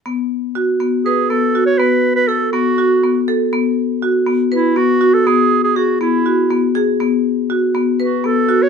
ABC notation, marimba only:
X:1
M:7/8
L:1/8
Q:1/4=121
K:E
V:1 name="Marimba"
B,2 F B, B B, F | B,2 A B, F B, A | B,2 F B, B B, F | B,2 G B, F B, G |
B,2 F B, B B, F |]